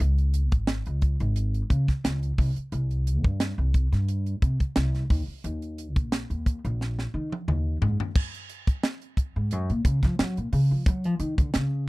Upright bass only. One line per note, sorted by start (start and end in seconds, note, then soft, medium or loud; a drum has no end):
0.00 0.52 C#2 medium
0.52 0.80 G#1 medium
0.87 1.14 C#2 medium
1.20 1.61 G#1 medium
1.70 1.85 C#3 medium
2.04 2.32 C#2 medium
2.38 2.53 C2 medium
2.56 muted upright bass stroke soft
2.72 3.24 C2 medium
3.24 3.52 G2 medium
3.58 3.86 C2 medium
3.92 4.33 G2 medium
4.42 4.57 C3 medium
4.76 5.04 C2 medium
5.10 5.25 D#2 medium
5.27 muted upright bass stroke soft
5.44 5.96 D#2 medium
5.96 6.24 A#1 medium
6.30 6.58 D#2 medium
6.65 7.05 A#1 medium
7.14 7.29 D#3 medium
7.48 7.75 D#2 medium
7.82 7.96 G#2 medium
7.99 muted upright bass stroke soft
9.36 9.52 G#2 medium
9.52 9.69 F#2 medium
9.70 9.85 A#2 medium
9.85 10.03 C#3 medium
10.04 10.18 F3 medium
10.19 10.36 F#3 medium
10.38 10.52 A#2 medium
10.53 10.70 C#3 medium
10.71 10.86 F3 medium
10.88 11.05 F#3 medium
11.05 11.19 F3 medium
11.20 11.37 D#3 medium
11.40 11.54 D3 medium
11.55 11.89 C#3 medium